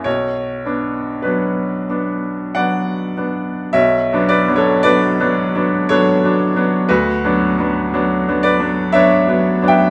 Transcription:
<<
  \new Staff \with { instrumentName = "Upright piano" } { \time 3/4 \key b \minor \tempo 4 = 58 cis''4 b'4 <d'' fis''>4 | <cis'' e''>8 <b' d''>16 <a' cis''>16 <b' d''>4 <a' cis''>4 | <fis' b'>4. <b' d''>8 <cis'' e''>8. <e'' g''>16 | }
  \new Staff \with { instrumentName = "Upright piano" } { \time 3/4 \key b \minor b,,8 <b d'>8 <fis b d'>8 <b d'>8 <fis b d'>8 <b d'>8 | \tuplet 3/2 { b,,8 <fis b d'>8 <fis b d'>8 <fis b d'>8 <fis b d'>8 <fis b d'>8 <fis b d'>8 <fis b d'>8 <fis b d'>8 } | \tuplet 3/2 { d,8 <fis b d'>8 <fis b d'>8 <fis b d'>8 <fis b d'>8 <fis b d'>8 <fis b d'>8 <fis b d'>8 <fis b d'>8 } | }
>>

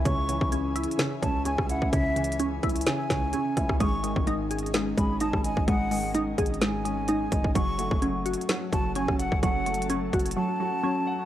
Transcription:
<<
  \new Staff \with { instrumentName = "Flute" } { \time 4/4 \key cis \minor \tempo 4 = 128 cis'''4 r4. a''8 gis''8 fis''8 | e''4 r4 gis''2 | cis'''4 r4. b''8 a''8 gis''8 | fis''4 r4 gis''2 |
cis'''4 r4. a''8 gis''8 fis''8 | fis''4 r4 a''2 | }
  \new Staff \with { instrumentName = "Ambient pad" } { \time 4/4 \key cis \minor << { <cis' gis' gis''>1~ | <cis' gis' gis''>1~ | <cis' gis' gis''>1~ | <cis' gis' gis''>1 |
<cis' a' a''>1~ | <cis' a' a''>1 | } \\ { e''1~ | e''1 | dis''1~ | dis''1 |
fis''1~ | fis''1 | } >> }
  \new Staff \with { instrumentName = "Synth pluck" } { \clef bass \time 4/4 \key cis \minor <cis cis' e'>8 cis8 cis'8 e'8 cis8 cis8 cis'4 | cis8 cis8 cis'8 e'8 cis8 cis8 cis'4 | gis8 gis8 dis'8 gis'8 gis8 gis8 dis'4 | gis8 gis8 dis'8 gis'8 gis8 gis8 dis'4 |
fis8 fis8 cis'8 fis'8 fis8 fis8 cis'4 | fis8 fis8 cis'8 fis'8 fis8 fis8 cis'4 | }
  \new Staff \with { instrumentName = "Grand piano" } { \clef bass \time 4/4 \key cis \minor <cis cis' e'>8 e8 cis4 cis8 cis'8 cis8 e'8 | cis8 e8 cis4 cis8 cis'8 cis8 e'8 | gis,8 dis8 gis,4 gis,8 cis'8 gis,8 dis'8 | gis,8 dis8 gis,4 gis,8 cis'8 gis,8 dis'8 |
fis8 a8 fis4 fis8 fis'8 fis8 fis''8 | fis8 a8 fis4 fis8 fis'8 fis8 fis''8 | }
  \new Staff \with { instrumentName = "808-style bass" } { \clef bass \time 4/4 \key cis \minor cis,8. cis,4 r8. cis,8. cis,8 cis,16~ | cis,4. cis,8 r8 cis,8 r8 cis,8 | gis,,8. gis,,4.~ gis,,16 gis,,8. gis,,8 gis,,16~ | gis,,4. gis,,2 gis,,8 |
fis,,8. fis,,4 r8. fis,,8. fis,,8 fis,,16 | fis,,4. fis,,8 r2 | }
  \new DrumStaff \with { instrumentName = "Drums" } \drummode { \time 4/4 <hh bd>8 hh16 bd16 \tuplet 3/2 { hh16 r16 r16 hh16 hh16 hh16 } <hh sn>8 <hh bd>8 hh16 <bd ss>16 hh16 bd16 | \tuplet 3/2 { <hh bd>16 r16 r16 <hh hho>16 hh16 hh16 } hh8 <hh bd>32 hh32 hh32 hh32 <hh sn>8 <hh bd sn>8 hh8 <hh bd ss>16 <bd ss>16 | <hh bd>8 hh16 bd16 \tuplet 3/2 { hh16 r16 r16 hh16 hh16 hh16 } <hh sn>8 <hh bd>8 hh16 <bd ss>16 hh16 bd16 | <hh bd>8 hho8 \tuplet 3/2 { hh16 r16 r16 <hh bd>16 hh16 hh16 } <hh sn>8 hh8 hh8 <hh bd>16 bd16 |
<hh bd>8 hh16 bd16 \tuplet 3/2 { hh16 r16 r16 hh16 hh16 hh16 } <hh sn>8 <hh bd>8 hh16 <bd ss>16 hh16 bd16 | \tuplet 3/2 { <hh bd>16 r16 r16 <hh hho>16 hh16 hh16 } hh8 <hh bd>32 hh32 hh32 hh32 r4 r4 | }
>>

